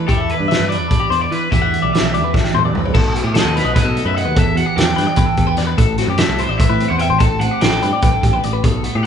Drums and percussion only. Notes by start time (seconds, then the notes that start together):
0.09 kick, closed hi-hat
0.29 closed hi-hat
0.51 snare, closed hi-hat
0.72 closed hi-hat
0.91 kick, closed hi-hat
1.12 closed hi-hat
1.32 closed hi-hat
1.52 kick, closed hi-hat
1.74 closed hi-hat
1.94 snare, closed hi-hat
2.14 closed hi-hat
2.34 kick, snare
2.44 snare
2.54 high tom
2.65 mid tom
2.75 mid tom
2.85 floor tom
2.95 kick, crash
3.16 closed hi-hat
3.35 snare, closed hi-hat
3.57 snare, closed hi-hat
3.76 kick, snare, closed hi-hat
3.97 closed hi-hat
4.17 closed hi-hat
4.36 kick, closed hi-hat
4.57 closed hi-hat
4.78 snare, closed hi-hat
4.98 snare, closed hi-hat
5.16 kick, closed hi-hat
5.37 kick, closed hi-hat
5.57 snare, closed hi-hat
5.78 kick, closed hi-hat
5.98 snare, closed hi-hat
6.18 snare, closed hi-hat
6.38 closed hi-hat
6.60 kick, closed hi-hat
6.80 closed hi-hat
6.99 closed hi-hat
7.20 kick, closed hi-hat
7.41 closed hi-hat
7.61 snare, closed hi-hat
7.82 closed hi-hat
8.02 kick, closed hi-hat
8.23 kick, closed hi-hat
8.43 closed hi-hat
8.64 kick, closed hi-hat
8.84 closed hi-hat